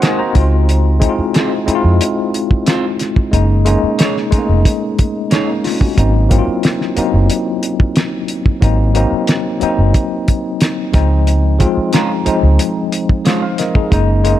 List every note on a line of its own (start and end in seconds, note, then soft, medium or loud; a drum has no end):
0.00 0.19 G#3 medium
0.00 0.37 A#3 medium
0.00 0.35 C4 medium
0.00 0.35 D#4 medium
0.00 0.19 D#4 medium
0.00 0.20 F#4 medium
0.00 0.19 F#4 medium
0.00 0.03 A#4 soft
0.00 0.18 A#4 medium
0.00 0.19 C5 medium
0.00 0.20 C5 medium
0.00 0.03 D#5 medium
0.00 0.18 D#5 medium
0.00 0.37 F5 medium
0.00 0.37 F#5 medium
0.00 0.18 G#5 medium
0.00 snare medium
0.00 closed hi-hat medium
0.19 0.50 F#4 soft
0.19 0.50 C5 medium
0.19 0.65 A#5 medium
0.34 1.04 C#2 medium
0.34 0.96 G#3 medium
0.34 0.97 C4 medium
0.34 0.97 D#4 medium
0.34 0.98 F4 medium
0.34 kick loud
0.34 closed hi-hat medium
0.69 closed hi-hat medium
1.00 1.63 G#3 medium
1.00 1.63 C4 medium
1.00 1.63 D#4 medium
1.00 1.08 E4 medium
1.00 1.92 G#5 soft
1.00 kick medium
1.00 closed hi-hat medium
1.09 1.67 F4 medium
1.19 muted fingered electric bass stroke soft
1.34 1.51 C4 medium
1.34 1.52 F4 medium
1.34 1.52 G#4 medium
1.34 1.52 C5 medium
1.34 snare medium
1.34 closed hi-hat medium
1.66 2.91 G#3 medium
1.66 2.91 C4 medium
1.66 2.92 D#4 medium
1.66 1.74 E4 medium
1.66 muted fingered electric bass stroke soft
1.66 closed hi-hat medium
1.75 2.95 F4 medium
1.84 1.98 F2 medium
2.01 closed hi-hat medium
2.34 closed hi-hat medium
2.51 kick medium
2.66 2.84 C4 medium
2.66 2.84 F4 medium
2.66 2.84 G#4 medium
2.66 2.84 C5 medium
2.66 snare loud
2.66 closed hi-hat medium
2.99 snare soft
2.99 closed hi-hat medium
3.16 kick medium
3.31 3.75 F#1 medium
3.31 3.63 G#3 medium
3.31 3.64 A#3 medium
3.31 3.64 C#4 medium
3.31 3.65 D#4 medium
3.31 kick medium
3.31 closed hi-hat medium
3.65 4.28 G#3 medium
3.65 4.28 A#3 medium
3.65 4.28 C#4 medium
3.65 4.29 D#4 medium
3.65 closed hi-hat medium
3.83 muted fingered electric bass stroke soft
3.98 4.16 A#3 medium
3.98 4.16 D#4 medium
3.98 4.16 G#4 medium
3.98 4.17 C#5 medium
3.98 snare medium
3.98 closed hi-hat medium
4.17 snare soft
4.31 5.31 G#3 medium
4.31 4.38 A3 medium
4.31 5.30 C#4 medium
4.31 5.32 D#4 medium
4.31 muted fingered electric bass stroke soft
4.31 kick medium
4.31 closed hi-hat medium
4.38 5.35 A#3 medium
4.49 4.63 F1 medium
4.65 kick medium
4.65 closed hi-hat medium
4.99 kick medium
4.99 closed hi-hat medium
5.31 5.48 G#3 soft
5.31 5.48 A#3 medium
5.31 5.47 C#4 medium
5.31 5.49 D#4 medium
5.31 5.49 G#4 medium
5.31 5.49 C#5 medium
5.31 snare loud
5.31 closed hi-hat medium
5.48 5.64 A#3 medium
5.48 5.64 D#4 medium
5.64 5.81 C4 soft
5.64 5.80 F4 medium
5.64 snare soft
5.64 open hi-hat medium
5.81 6.13 C#4 medium
5.81 6.13 F#4 medium
5.81 kick medium
5.97 6.39 G#1 medium
5.97 6.28 F#3 medium
5.97 6.29 A#3 medium
5.97 6.29 C4 medium
5.97 6.30 D#4 medium
5.97 kick medium
5.97 closed hi-hat medium
6.29 6.92 F#3 medium
6.29 6.92 A#3 medium
6.29 6.93 C4 medium
6.29 6.38 E4 medium
6.29 kick medium
6.29 closed hi-hat medium
6.39 6.97 F4 medium
6.47 muted fingered electric bass stroke soft
6.63 snare medium
6.63 closed hi-hat medium
6.81 snare soft
6.96 8.21 F#3 medium
6.96 8.21 A#3 medium
6.96 8.21 C4 medium
6.96 8.22 D#4 medium
6.96 muted fingered electric bass stroke soft
6.96 closed hi-hat medium
7.14 7.27 F#1 medium
7.30 closed hi-hat medium
7.63 closed hi-hat medium
7.80 kick medium
7.96 snare loud
7.96 closed hi-hat medium
8.28 closed hi-hat medium
8.46 kick medium
8.61 9.04 G#1 medium
8.61 8.93 F#3 medium
8.61 8.93 A#3 medium
8.61 8.94 C4 medium
8.61 8.94 D#4 medium
8.61 kick medium
8.61 closed hi-hat medium
8.94 9.57 F#3 medium
8.94 9.57 A#3 medium
8.94 9.58 C4 medium
8.94 9.58 D#4 medium
8.94 closed hi-hat medium
9.12 muted fingered electric bass stroke soft
9.27 snare medium
9.27 closed hi-hat medium
9.60 10.85 F#3 medium
9.60 10.85 A#3 medium
9.60 10.86 C4 medium
9.60 10.86 D#4 medium
9.60 muted fingered electric bass stroke soft
9.60 closed hi-hat medium
9.78 9.92 F#1 medium
9.94 kick medium
9.94 closed hi-hat medium
10.28 kick medium
10.28 closed hi-hat medium
10.61 snare loud
10.61 closed hi-hat medium
10.93 11.63 C#2 medium
10.93 11.55 F3 medium
10.93 11.56 G#3 medium
10.93 11.56 C4 medium
10.93 11.57 D#4 medium
10.93 kick loud
10.93 snare soft
10.93 closed hi-hat medium
11.27 closed hi-hat medium
11.59 12.21 F3 medium
11.59 12.22 G#3 medium
11.59 12.22 C4 medium
11.59 12.23 F4 medium
11.59 kick medium
11.59 closed hi-hat medium
11.77 muted fingered electric bass stroke soft
11.93 12.10 G#3 medium
11.93 12.10 C#4 medium
11.93 12.10 F4 medium
11.93 12.11 C5 medium
11.93 12.84 A#5 medium
11.93 snare medium
11.93 closed hi-hat medium
12.25 13.50 F3 medium
12.25 13.50 G#3 medium
12.25 13.51 C4 medium
12.25 13.26 D#4 medium
12.25 muted fingered electric bass stroke soft
12.25 closed hi-hat medium
12.43 12.57 C#2 medium
12.59 closed hi-hat medium
12.92 closed hi-hat medium
13.09 kick medium
13.25 13.42 G#3 medium
13.25 13.43 C#4 medium
13.25 13.43 F4 medium
13.25 13.43 C5 medium
13.25 snare loud
13.25 closed hi-hat medium
13.42 13.58 C5 soft
13.42 13.58 F5 medium
13.58 13.75 A#4 medium
13.58 13.74 D#5 medium
13.58 snare soft
13.58 closed hi-hat medium
13.75 13.92 D#4 medium
13.75 14.07 G#4 medium
13.75 kick medium
13.91 14.33 F#1 medium
13.91 14.22 G#3 medium
13.91 14.23 A#3 medium
13.91 14.23 C#4 medium
13.91 14.23 D#4 medium
13.91 kick medium
13.91 closed hi-hat medium
14.24 14.40 G#3 medium
14.24 14.40 A#3 medium
14.24 14.40 C#4 medium
14.24 14.40 D#4 medium
14.24 14.40 D#5 soft
14.24 closed hi-hat medium